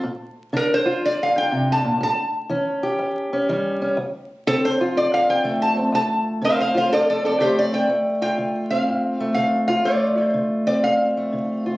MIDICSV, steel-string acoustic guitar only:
0, 0, Header, 1, 2, 480
1, 0, Start_track
1, 0, Key_signature, -1, "minor"
1, 0, Tempo, 490998
1, 36, Time_signature, 4, 2, 24, 8
1, 11506, End_track
2, 0, Start_track
2, 0, Title_t, "Steel-string acoustic guitar"
2, 0, Program_c, 0, 25
2, 35, Note_on_c, 0, 46, 78
2, 485, Note_off_c, 0, 46, 0
2, 517, Note_on_c, 0, 50, 65
2, 524, Note_on_c, 0, 62, 62
2, 837, Note_on_c, 0, 65, 70
2, 967, Note_off_c, 0, 50, 0
2, 992, Note_on_c, 0, 41, 64
2, 1314, Note_off_c, 0, 62, 0
2, 1326, Note_on_c, 0, 62, 61
2, 1445, Note_off_c, 0, 41, 0
2, 1480, Note_on_c, 0, 48, 68
2, 1800, Note_off_c, 0, 48, 0
2, 1804, Note_on_c, 0, 46, 66
2, 1941, Note_off_c, 0, 65, 0
2, 1945, Note_off_c, 0, 62, 0
2, 1957, Note_off_c, 0, 46, 0
2, 1961, Note_on_c, 0, 45, 85
2, 2410, Note_off_c, 0, 45, 0
2, 2439, Note_on_c, 0, 52, 68
2, 2448, Note_on_c, 0, 61, 65
2, 2767, Note_on_c, 0, 67, 73
2, 2889, Note_off_c, 0, 52, 0
2, 2921, Note_on_c, 0, 40, 70
2, 3242, Note_off_c, 0, 61, 0
2, 3254, Note_on_c, 0, 61, 60
2, 3370, Note_off_c, 0, 40, 0
2, 3411, Note_on_c, 0, 52, 68
2, 3417, Note_on_c, 0, 55, 63
2, 3720, Note_off_c, 0, 61, 0
2, 3732, Note_on_c, 0, 61, 63
2, 3855, Note_off_c, 0, 52, 0
2, 3866, Note_off_c, 0, 67, 0
2, 3868, Note_off_c, 0, 61, 0
2, 3881, Note_on_c, 0, 38, 82
2, 3890, Note_off_c, 0, 55, 0
2, 4330, Note_off_c, 0, 38, 0
2, 4371, Note_on_c, 0, 50, 72
2, 4380, Note_on_c, 0, 60, 65
2, 4700, Note_on_c, 0, 65, 69
2, 4814, Note_off_c, 0, 50, 0
2, 4843, Note_on_c, 0, 45, 66
2, 5168, Note_off_c, 0, 60, 0
2, 5172, Note_on_c, 0, 60, 61
2, 5290, Note_off_c, 0, 45, 0
2, 5315, Note_on_c, 0, 50, 71
2, 5324, Note_on_c, 0, 57, 62
2, 5636, Note_off_c, 0, 60, 0
2, 5640, Note_on_c, 0, 60, 60
2, 5765, Note_off_c, 0, 50, 0
2, 5791, Note_on_c, 0, 38, 82
2, 5821, Note_off_c, 0, 60, 0
2, 6242, Note_off_c, 0, 38, 0
2, 6271, Note_on_c, 0, 50, 71
2, 6278, Note_on_c, 0, 60, 65
2, 6589, Note_off_c, 0, 65, 0
2, 6593, Note_on_c, 0, 65, 73
2, 6722, Note_off_c, 0, 50, 0
2, 6744, Note_on_c, 0, 45, 66
2, 7056, Note_off_c, 0, 60, 0
2, 7068, Note_on_c, 0, 60, 59
2, 7198, Note_off_c, 0, 45, 0
2, 7232, Note_off_c, 0, 57, 0
2, 7232, Note_on_c, 0, 50, 69
2, 7236, Note_on_c, 0, 57, 65
2, 7543, Note_off_c, 0, 60, 0
2, 7554, Note_on_c, 0, 60, 62
2, 7681, Note_off_c, 0, 50, 0
2, 7694, Note_off_c, 0, 65, 0
2, 7695, Note_off_c, 0, 60, 0
2, 7696, Note_off_c, 0, 57, 0
2, 7704, Note_on_c, 0, 38, 74
2, 7716, Note_on_c, 0, 57, 60
2, 8032, Note_on_c, 0, 65, 67
2, 8157, Note_off_c, 0, 38, 0
2, 8190, Note_on_c, 0, 50, 60
2, 8520, Note_on_c, 0, 60, 53
2, 8639, Note_off_c, 0, 50, 0
2, 8681, Note_on_c, 0, 45, 58
2, 8995, Note_off_c, 0, 57, 0
2, 8999, Note_on_c, 0, 57, 55
2, 9125, Note_off_c, 0, 45, 0
2, 9157, Note_on_c, 0, 50, 65
2, 9470, Note_off_c, 0, 65, 0
2, 9474, Note_on_c, 0, 65, 67
2, 9603, Note_off_c, 0, 50, 0
2, 9629, Note_off_c, 0, 57, 0
2, 9629, Note_on_c, 0, 38, 75
2, 9633, Note_on_c, 0, 57, 66
2, 9658, Note_off_c, 0, 60, 0
2, 9944, Note_off_c, 0, 65, 0
2, 9948, Note_on_c, 0, 65, 65
2, 10078, Note_off_c, 0, 38, 0
2, 10106, Note_on_c, 0, 50, 67
2, 10435, Note_on_c, 0, 60, 56
2, 10557, Note_off_c, 0, 50, 0
2, 10601, Note_on_c, 0, 45, 65
2, 10918, Note_off_c, 0, 57, 0
2, 10922, Note_on_c, 0, 57, 56
2, 11045, Note_off_c, 0, 45, 0
2, 11074, Note_on_c, 0, 50, 61
2, 11395, Note_off_c, 0, 65, 0
2, 11399, Note_on_c, 0, 65, 62
2, 11506, Note_off_c, 0, 50, 0
2, 11506, Note_off_c, 0, 57, 0
2, 11506, Note_off_c, 0, 60, 0
2, 11506, Note_off_c, 0, 65, 0
2, 11506, End_track
0, 0, End_of_file